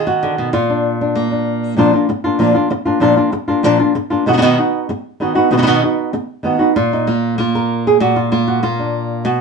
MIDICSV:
0, 0, Header, 1, 3, 480
1, 0, Start_track
1, 0, Tempo, 311203
1, 821, Time_signature, 4, 2, 24, 8
1, 14512, End_track
2, 0, Start_track
2, 0, Title_t, "Nylon-string guitar"
2, 0, Program_c, 0, 24
2, 0, Note_on_c, 0, 51, 61
2, 0, Note_on_c, 0, 63, 52
2, 0, Note_on_c, 0, 65, 87
2, 105, Note_on_c, 0, 66, 96
2, 175, Note_off_c, 0, 65, 0
2, 350, Note_on_c, 0, 50, 63
2, 585, Note_off_c, 0, 50, 0
2, 592, Note_on_c, 0, 47, 64
2, 805, Note_off_c, 0, 63, 0
2, 812, Note_off_c, 0, 47, 0
2, 818, Note_on_c, 0, 46, 76
2, 821, Note_off_c, 0, 51, 0
2, 821, Note_on_c, 0, 65, 89
2, 824, Note_off_c, 0, 66, 0
2, 1074, Note_on_c, 0, 62, 47
2, 1542, Note_off_c, 0, 62, 0
2, 1561, Note_on_c, 0, 62, 51
2, 1782, Note_on_c, 0, 58, 70
2, 2008, Note_off_c, 0, 62, 0
2, 2027, Note_on_c, 0, 62, 45
2, 2706, Note_off_c, 0, 46, 0
2, 2717, Note_off_c, 0, 58, 0
2, 2719, Note_off_c, 0, 62, 0
2, 2724, Note_on_c, 0, 46, 79
2, 2736, Note_off_c, 0, 65, 0
2, 2740, Note_on_c, 0, 53, 79
2, 2745, Note_on_c, 0, 58, 90
2, 2754, Note_on_c, 0, 62, 88
2, 2754, Note_on_c, 0, 65, 84
2, 2965, Note_off_c, 0, 65, 0
2, 2966, Note_off_c, 0, 46, 0
2, 2974, Note_off_c, 0, 53, 0
2, 2977, Note_off_c, 0, 58, 0
2, 2981, Note_off_c, 0, 62, 0
2, 2984, Note_on_c, 0, 65, 51
2, 3001, Note_on_c, 0, 62, 43
2, 3010, Note_on_c, 0, 58, 41
2, 3208, Note_off_c, 0, 58, 0
2, 3215, Note_off_c, 0, 62, 0
2, 3216, Note_off_c, 0, 65, 0
2, 3456, Note_on_c, 0, 65, 59
2, 3474, Note_on_c, 0, 62, 50
2, 3486, Note_on_c, 0, 58, 51
2, 3681, Note_off_c, 0, 58, 0
2, 3686, Note_on_c, 0, 46, 85
2, 3690, Note_on_c, 0, 53, 77
2, 3692, Note_off_c, 0, 62, 0
2, 3693, Note_off_c, 0, 65, 0
2, 3699, Note_on_c, 0, 58, 88
2, 3711, Note_on_c, 0, 62, 90
2, 3712, Note_on_c, 0, 65, 89
2, 3909, Note_off_c, 0, 65, 0
2, 3927, Note_off_c, 0, 62, 0
2, 3928, Note_off_c, 0, 46, 0
2, 3928, Note_on_c, 0, 65, 52
2, 3930, Note_off_c, 0, 53, 0
2, 3935, Note_off_c, 0, 58, 0
2, 3945, Note_on_c, 0, 62, 50
2, 3961, Note_on_c, 0, 58, 39
2, 4158, Note_off_c, 0, 58, 0
2, 4158, Note_off_c, 0, 62, 0
2, 4169, Note_off_c, 0, 65, 0
2, 4403, Note_on_c, 0, 65, 61
2, 4419, Note_on_c, 0, 62, 61
2, 4432, Note_on_c, 0, 58, 49
2, 4629, Note_off_c, 0, 58, 0
2, 4630, Note_on_c, 0, 46, 83
2, 4632, Note_off_c, 0, 62, 0
2, 4640, Note_on_c, 0, 53, 86
2, 4647, Note_off_c, 0, 65, 0
2, 4648, Note_on_c, 0, 58, 83
2, 4650, Note_on_c, 0, 62, 89
2, 4663, Note_on_c, 0, 65, 86
2, 4867, Note_off_c, 0, 65, 0
2, 4881, Note_off_c, 0, 46, 0
2, 4885, Note_off_c, 0, 53, 0
2, 4885, Note_on_c, 0, 65, 53
2, 4886, Note_off_c, 0, 62, 0
2, 4889, Note_off_c, 0, 58, 0
2, 4905, Note_on_c, 0, 62, 46
2, 4914, Note_on_c, 0, 58, 44
2, 5114, Note_off_c, 0, 58, 0
2, 5117, Note_off_c, 0, 65, 0
2, 5118, Note_off_c, 0, 62, 0
2, 5364, Note_on_c, 0, 65, 57
2, 5379, Note_on_c, 0, 62, 53
2, 5395, Note_on_c, 0, 58, 51
2, 5599, Note_off_c, 0, 58, 0
2, 5602, Note_on_c, 0, 46, 81
2, 5608, Note_off_c, 0, 65, 0
2, 5609, Note_off_c, 0, 62, 0
2, 5610, Note_on_c, 0, 53, 87
2, 5618, Note_on_c, 0, 58, 93
2, 5628, Note_on_c, 0, 62, 93
2, 5637, Note_on_c, 0, 65, 82
2, 5829, Note_off_c, 0, 65, 0
2, 5839, Note_off_c, 0, 62, 0
2, 5846, Note_off_c, 0, 46, 0
2, 5847, Note_on_c, 0, 65, 52
2, 5851, Note_off_c, 0, 53, 0
2, 5851, Note_off_c, 0, 58, 0
2, 5857, Note_on_c, 0, 62, 52
2, 5870, Note_on_c, 0, 58, 40
2, 6083, Note_off_c, 0, 58, 0
2, 6087, Note_off_c, 0, 62, 0
2, 6089, Note_off_c, 0, 65, 0
2, 6328, Note_on_c, 0, 65, 65
2, 6341, Note_on_c, 0, 62, 53
2, 6356, Note_on_c, 0, 58, 52
2, 6570, Note_off_c, 0, 65, 0
2, 6574, Note_on_c, 0, 47, 79
2, 6576, Note_off_c, 0, 62, 0
2, 6584, Note_off_c, 0, 58, 0
2, 6587, Note_on_c, 0, 51, 85
2, 6594, Note_on_c, 0, 59, 81
2, 6597, Note_on_c, 0, 63, 87
2, 6605, Note_on_c, 0, 66, 92
2, 6660, Note_off_c, 0, 51, 0
2, 6665, Note_off_c, 0, 59, 0
2, 6671, Note_off_c, 0, 63, 0
2, 6676, Note_off_c, 0, 66, 0
2, 6678, Note_on_c, 0, 51, 55
2, 6683, Note_on_c, 0, 59, 50
2, 6690, Note_on_c, 0, 63, 46
2, 6695, Note_on_c, 0, 66, 52
2, 6729, Note_off_c, 0, 51, 0
2, 6735, Note_off_c, 0, 59, 0
2, 6744, Note_off_c, 0, 63, 0
2, 6748, Note_off_c, 0, 66, 0
2, 6748, Note_on_c, 0, 51, 67
2, 6753, Note_on_c, 0, 59, 60
2, 6762, Note_on_c, 0, 63, 68
2, 6767, Note_on_c, 0, 66, 66
2, 6797, Note_off_c, 0, 47, 0
2, 6800, Note_off_c, 0, 51, 0
2, 6802, Note_off_c, 0, 59, 0
2, 6808, Note_off_c, 0, 63, 0
2, 6816, Note_on_c, 0, 47, 81
2, 6817, Note_off_c, 0, 66, 0
2, 6818, Note_on_c, 0, 51, 80
2, 6820, Note_on_c, 0, 59, 80
2, 6826, Note_on_c, 0, 63, 78
2, 6835, Note_on_c, 0, 66, 81
2, 7045, Note_off_c, 0, 66, 0
2, 7053, Note_off_c, 0, 47, 0
2, 7055, Note_off_c, 0, 51, 0
2, 7056, Note_off_c, 0, 59, 0
2, 7058, Note_off_c, 0, 63, 0
2, 7063, Note_on_c, 0, 66, 48
2, 7075, Note_on_c, 0, 63, 52
2, 7086, Note_on_c, 0, 59, 46
2, 7529, Note_off_c, 0, 59, 0
2, 7536, Note_off_c, 0, 63, 0
2, 7536, Note_off_c, 0, 66, 0
2, 8021, Note_on_c, 0, 51, 51
2, 8029, Note_on_c, 0, 59, 62
2, 8039, Note_on_c, 0, 63, 60
2, 8050, Note_on_c, 0, 66, 60
2, 8238, Note_off_c, 0, 66, 0
2, 8254, Note_off_c, 0, 63, 0
2, 8255, Note_off_c, 0, 51, 0
2, 8256, Note_on_c, 0, 66, 66
2, 8259, Note_off_c, 0, 59, 0
2, 8272, Note_on_c, 0, 63, 53
2, 8286, Note_on_c, 0, 59, 50
2, 8492, Note_off_c, 0, 66, 0
2, 8494, Note_on_c, 0, 47, 87
2, 8495, Note_off_c, 0, 59, 0
2, 8500, Note_off_c, 0, 63, 0
2, 8503, Note_on_c, 0, 51, 79
2, 8513, Note_on_c, 0, 59, 85
2, 8518, Note_on_c, 0, 63, 77
2, 8522, Note_on_c, 0, 66, 81
2, 8534, Note_off_c, 0, 51, 0
2, 8544, Note_off_c, 0, 59, 0
2, 8549, Note_off_c, 0, 63, 0
2, 8553, Note_off_c, 0, 66, 0
2, 8601, Note_on_c, 0, 51, 54
2, 8614, Note_on_c, 0, 59, 60
2, 8616, Note_on_c, 0, 63, 60
2, 8619, Note_on_c, 0, 66, 58
2, 8654, Note_off_c, 0, 51, 0
2, 8660, Note_off_c, 0, 59, 0
2, 8666, Note_off_c, 0, 63, 0
2, 8667, Note_off_c, 0, 66, 0
2, 8673, Note_on_c, 0, 51, 70
2, 8678, Note_on_c, 0, 59, 69
2, 8684, Note_on_c, 0, 63, 73
2, 8686, Note_on_c, 0, 66, 75
2, 8722, Note_off_c, 0, 47, 0
2, 8727, Note_off_c, 0, 51, 0
2, 8732, Note_off_c, 0, 59, 0
2, 8736, Note_off_c, 0, 66, 0
2, 8740, Note_on_c, 0, 47, 84
2, 8741, Note_off_c, 0, 63, 0
2, 8745, Note_on_c, 0, 51, 74
2, 8750, Note_on_c, 0, 59, 78
2, 8755, Note_on_c, 0, 66, 79
2, 8759, Note_on_c, 0, 63, 87
2, 8969, Note_off_c, 0, 66, 0
2, 8974, Note_off_c, 0, 47, 0
2, 8977, Note_off_c, 0, 51, 0
2, 8979, Note_off_c, 0, 59, 0
2, 8979, Note_off_c, 0, 63, 0
2, 8987, Note_on_c, 0, 66, 48
2, 8998, Note_on_c, 0, 63, 49
2, 9015, Note_on_c, 0, 59, 43
2, 9447, Note_off_c, 0, 63, 0
2, 9450, Note_off_c, 0, 59, 0
2, 9457, Note_off_c, 0, 66, 0
2, 9918, Note_on_c, 0, 51, 58
2, 9937, Note_on_c, 0, 59, 59
2, 9943, Note_on_c, 0, 63, 64
2, 9952, Note_on_c, 0, 66, 66
2, 10145, Note_off_c, 0, 66, 0
2, 10162, Note_off_c, 0, 51, 0
2, 10164, Note_off_c, 0, 63, 0
2, 10164, Note_on_c, 0, 66, 61
2, 10172, Note_off_c, 0, 59, 0
2, 10183, Note_on_c, 0, 63, 53
2, 10191, Note_on_c, 0, 59, 50
2, 10405, Note_off_c, 0, 66, 0
2, 10414, Note_off_c, 0, 63, 0
2, 10418, Note_off_c, 0, 59, 0
2, 10427, Note_on_c, 0, 46, 70
2, 10427, Note_on_c, 0, 65, 82
2, 10690, Note_on_c, 0, 63, 69
2, 10904, Note_off_c, 0, 65, 0
2, 10909, Note_on_c, 0, 58, 65
2, 10917, Note_off_c, 0, 63, 0
2, 10933, Note_on_c, 0, 65, 77
2, 11365, Note_off_c, 0, 58, 0
2, 11383, Note_on_c, 0, 58, 67
2, 11391, Note_off_c, 0, 65, 0
2, 11409, Note_on_c, 0, 65, 77
2, 11648, Note_on_c, 0, 70, 85
2, 12115, Note_off_c, 0, 65, 0
2, 12115, Note_off_c, 0, 70, 0
2, 12140, Note_on_c, 0, 68, 84
2, 12313, Note_off_c, 0, 58, 0
2, 12327, Note_off_c, 0, 46, 0
2, 12346, Note_on_c, 0, 46, 75
2, 12347, Note_off_c, 0, 68, 0
2, 12353, Note_on_c, 0, 66, 88
2, 12587, Note_off_c, 0, 66, 0
2, 12589, Note_on_c, 0, 65, 74
2, 12812, Note_off_c, 0, 65, 0
2, 12829, Note_on_c, 0, 58, 68
2, 12836, Note_on_c, 0, 65, 77
2, 13074, Note_on_c, 0, 66, 71
2, 13289, Note_off_c, 0, 58, 0
2, 13295, Note_off_c, 0, 65, 0
2, 13307, Note_off_c, 0, 66, 0
2, 13307, Note_on_c, 0, 58, 64
2, 13314, Note_on_c, 0, 65, 78
2, 13562, Note_on_c, 0, 62, 44
2, 14234, Note_off_c, 0, 58, 0
2, 14241, Note_off_c, 0, 62, 0
2, 14261, Note_off_c, 0, 46, 0
2, 14264, Note_on_c, 0, 47, 75
2, 14266, Note_off_c, 0, 65, 0
2, 14271, Note_on_c, 0, 66, 88
2, 14511, Note_off_c, 0, 66, 0
2, 14512, Note_off_c, 0, 47, 0
2, 14512, End_track
3, 0, Start_track
3, 0, Title_t, "Muted nylon-string guitar strokes"
3, 3221, Note_on_c, 9, 29, 66
3, 3375, Note_off_c, 9, 29, 0
3, 4168, Note_on_c, 9, 29, 67
3, 4322, Note_off_c, 9, 29, 0
3, 5125, Note_on_c, 9, 29, 67
3, 5279, Note_off_c, 9, 29, 0
3, 6095, Note_on_c, 9, 29, 75
3, 6249, Note_off_c, 9, 29, 0
3, 7544, Note_on_c, 9, 29, 68
3, 7698, Note_off_c, 9, 29, 0
3, 9458, Note_on_c, 9, 29, 74
3, 9612, Note_off_c, 9, 29, 0
3, 14512, End_track
0, 0, End_of_file